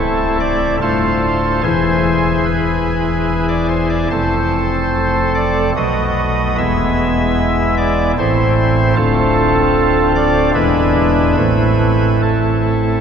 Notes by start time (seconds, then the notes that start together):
Already playing: C1 C2 A3 C4 E4 A4
0.40 D5
0.81 D1 D2 A3 F4 A4 C5
1.63 E1 E2 E3 E4 G#4 C5
2.45 B4
3.48 D5
3.68 C5
3.90 D5
4.11 F1 F2 A3 C4 A4 C5
5.35 D5
5.76 B1 B2 A3 B3 F#4 D#5
6.57 E1 E2 G#3 B3 E4 E5
7.77 D5
8.18 A1 A2 A3 C4 E4 C5
8.96 D1 D2 A3 C4 F4 A4
10.15 D5
10.54 E1 E2 G#3 D4 E4 B4
11.37 A1 A2 A3 C4 E4 B4
12.22 A4